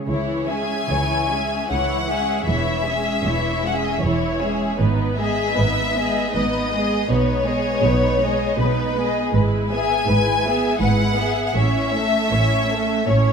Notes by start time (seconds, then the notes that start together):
0.08 C#2 C#3 E3 E4 C#5
0.48 G#3 C#4 G#4 E5 G#5
0.89 C#2 C#3 E3 E4 C#5
1.31 G#3 C#4 G#4 E5
1.70 C#2 C#3 E3 E4 C#5 F#5
2.10 G#3 C#4 G#4 E5
2.46 E1 E2 E3 E4 C#5 E5
2.85 G#3 C#4 G#4 E5
3.24 E1 E2 E3 E4 C#5
3.65 G#3 C#4 G#4 E5 F#5
3.76 E5
3.83 D#5
3.93 E5
4.02 E1 E2 E3 E4 C#5
4.41 G#3 C#4 G#4 E5
4.79 G#1 G#2 B3 D#4 B4
5.17 G#3 B3 G#4 D#5 E5
5.56 G#1 G#2 B3 D#4 B4
5.95 G#3 B3 G#4 D#5
6.34 G#1 G#2 B3 D#4 B4 D#5
6.72 G#3 B3 G#4 D#5
7.08 B1 B2 B3 D#4 B4 C#5
7.45 G#3 B3 G#4 D#5
7.84 B1 B2 B3 D#4 B4
8.21 G#3 B3 G#4 D#5
8.58 B1 B2 B3 D#4 B4
8.98 G#3 B3 G#4 D#5
9.34 G#1 G#2 G#3 E4 B4
9.71 B3 G#4 E5 G#5
10.08 G#1 G#2 G#3 E4 B4
10.46 B3 G#4 E5
10.79 G#1 G#2 G#3 E4 B4 F#5
11.17 B3 G#4 E5
11.46 F#5
11.52 A1 A2 C#5 E5
11.57 C#4 E4
11.94 A3 C#4 A4 E5
12.31 A1 A2 C#4 E4 C#5
12.70 A3 C#4 A4 E5
13.07 A1 A2 C#4 E4 C#5